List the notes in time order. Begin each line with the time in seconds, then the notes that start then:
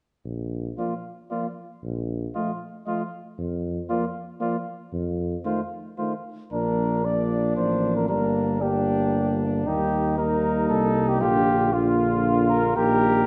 0.25 A#1
0.78 F3 A#3 F4 D5
1.30 F3 A#3 F4 D5
1.83 A#1
2.35 F3 A3 F4 D#5
2.86 F3 A3 F4 D#5
3.38 F2
3.89 F3 A#3 F4 D5
4.40 F3 A#3 F4 D5
4.93 F2
5.45 D#3 A3 F4 C5
5.98 D#3 A3 F4 C5
6.52 A#1 F3 A#3 D4 A#4
7.05 F3 A#3 D4 D5
7.56 A1 C5
7.96 A#4
8.08 G1 G3 A#3 D4 A#4
8.61 G3 A#3 D4 G4
9.66 D#2 G3 A#3 D#4 G4
10.18 G3 A#3 D#4 A#4
10.69 C2 A4
11.09 G4
11.21 A#1 D3 A#3 F4 G4
11.73 D3 A#3 F4
12.50 A#4
12.76 A#1 D#3 A#3 G4 A#4